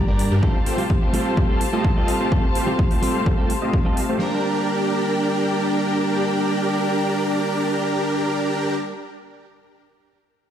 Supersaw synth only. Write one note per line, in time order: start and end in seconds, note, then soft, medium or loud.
0.07 0.23 D4 medium
0.07 0.23 G4 medium
0.07 0.23 D5 medium
0.31 0.40 D4 medium
0.31 0.40 G4 medium
0.31 0.40 A#4 loud
0.43 0.59 A3 medium
0.43 0.59 C4 medium
0.43 0.59 F4 medium
0.43 0.59 G4 medium
0.43 0.59 C5 medium
0.66 0.82 A3 medium
0.66 0.82 C4 medium
0.66 0.82 F4 medium
0.66 0.82 G4 medium
0.66 0.82 C5 loud
1.02 1.34 A3 medium
1.02 1.34 C4 medium
1.02 1.34 F4 medium
1.02 1.34 G4 medium
1.02 1.34 C5 medium
1.37 1.62 A3 medium
1.37 1.62 C4 medium
1.37 1.62 F4 medium
1.37 1.62 G4 medium
1.37 1.62 C5 medium
1.73 1.88 A3 medium
1.73 1.88 C4 medium
1.73 1.88 F4 medium
1.73 1.88 G4 medium
1.73 1.88 D#5 loud
1.96 2.12 A3 medium
1.96 2.12 C4 medium
1.96 2.12 F4 medium
1.96 2.12 G4 medium
1.96 2.12 D#5 medium
2.20 2.29 A3 medium
2.20 2.29 C4 medium
2.20 2.29 F4 medium
2.20 2.29 G4 medium
2.20 2.29 C5 loud
2.32 2.48 A3 medium
2.32 2.48 C4 medium
2.32 2.48 F4 medium
2.32 2.48 G4 medium
2.32 2.48 C5 medium
2.55 2.71 A3 medium
2.55 2.71 C4 medium
2.55 2.71 F4 medium
2.55 2.71 G4 medium
2.55 2.71 C5 loud
2.91 3.23 A3 medium
2.91 3.23 C4 medium
2.91 3.23 F4 medium
2.91 3.23 G4 medium
2.91 3.23 C5 medium
3.26 3.51 A3 medium
3.26 3.51 C4 medium
3.26 3.51 F4 medium
3.26 3.51 G4 medium
3.26 3.51 C5 loud
3.62 3.77 A3 medium
3.62 3.77 C4 medium
3.62 3.77 F4 medium
3.62 3.77 G4 medium
3.62 3.77 D#5 loud
3.85 4.01 A3 medium
3.85 4.01 C4 medium
3.85 4.01 F4 medium
3.85 4.01 G4 medium
3.85 4.01 D#5 medium
4.09 4.18 A3 medium
4.09 4.18 C4 medium
4.09 4.18 F4 medium
4.09 4.18 G4 medium
4.09 4.18 C5 loud
4.21 8.75 D4 medium
4.21 8.75 G4 medium
4.21 8.75 A#4 medium